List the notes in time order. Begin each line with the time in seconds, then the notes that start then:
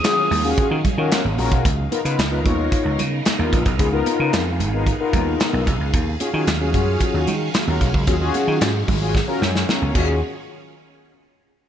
Already playing: D#3 F#3 C#4 G#4 F5 D#6
0.04 C#4 F4 F#4 G#4, snare, clap, closed hi-hat, high conga
0.31 D#2, open hi-hat, low conga
0.44 C#4 F4 F#4 G#4
0.58 kick, closed hi-hat
0.71 D#3
0.85 kick, closed hi-hat, low conga
0.97 D#3 C#4 F4 F#4 A#4
1.12 snare, clap, closed hi-hat, high conga
1.25 G#1, high conga
1.38 A#1 C#4 F4 F#4 A#4, open hi-hat, high conga
1.52 B1, kick, closed hi-hat
1.65 C#2 C#3 B3 D#4 A#4 F5, kick, closed hi-hat, muted conga
1.91 B3 D#4 F4 A#4, closed hi-hat, muted conga
2.04 C#3 B3 D#4 F4 B4, closed hi-hat
2.18 C#2, snare, clap, closed hi-hat, high conga
2.31 B3 D#4 F4 B4
2.44 D#2 B3 D#4 F4 C#5, kick, closed hi-hat, low conga
2.72 kick, closed hi-hat
2.85 C#2
2.99 C#3, closed hi-hat, low conga
3.26 snare, clap, closed hi-hat, high conga
3.39 D#2 B3 D#4 F4 A#4, high conga
3.53 A#1, kick, closed hi-hat
3.66 B1, kick, closed hi-hat
3.79 C#2 B3 D#4 F4 G#4, kick, closed hi-hat, muted conga
3.92 B3 D#4 F4 A#4
4.06 closed hi-hat, muted conga
4.20 C#3
4.33 F2, snare, clap, closed hi-hat, high conga
4.60 G#1, closed hi-hat, low conga
4.73 B3 D#4 F4 A#4
4.86 kick, closed hi-hat, muted conga
5.00 B3 D#4 F4 A#4
5.13 D#2, kick, closed hi-hat, low conga
5.40 snare, clap, closed hi-hat, high conga
5.53 B1, high conga
5.67 B1, kick, closed hi-hat
5.80 C#2
5.93 D#2 D#3 F#3 C#4, kick, closed hi-hat, muted conga
6.20 C#4 F4 F#4 G#4, closed hi-hat, muted conga
6.34 D#3 C#4 F4 F#4 G#4
6.47 D#2, snare, clap, closed hi-hat, high conga
6.61 C#4 F4 F#4 G#4
6.74 F#2 C#4 F4 F#4 G#4, kick, closed hi-hat, low conga
7.00 kick, closed hi-hat, muted conga
7.14 D#2
7.27 D#3, closed hi-hat, low conga
7.54 snare, clap, closed hi-hat, high conga
7.67 D#2 C#4 F4 F#4 A#4, high conga
7.81 B1, kick, closed hi-hat
7.94 C#2, kick
8.07 D#2 C#4 F4 F#4 G#4, kick, closed hi-hat, muted conga
8.21 C#4 F4 F#4 G#4
8.34 closed hi-hat, muted conga
8.48 D#3
8.61 G#2, snare, clap, closed hi-hat, high conga
8.88 G#1, kick, open hi-hat, low conga
9.01 C#4 F4 F#4 G#4
9.15 kick, snare, muted conga
9.28 C#4 F4 F#4 A#4
9.42 F#2, snare, low conga
9.55 snare
9.68 F#4 A#4, snare, high conga
9.81 C#2 A#4 C#5, high conga
9.94 D#2 D#3 C#4 F4 F#4 G#4, kick, crash, muted conga